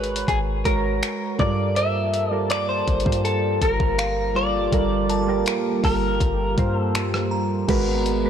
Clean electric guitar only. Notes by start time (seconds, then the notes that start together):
Already playing: B4
0.28 G#4
0.65 A#4
1.40 D5
1.77 E5
2.33 D5
2.51 D5
2.69 C5
3.25 A4
3.62 A#4
4.36 D5
5.85 A#4
6.78 A4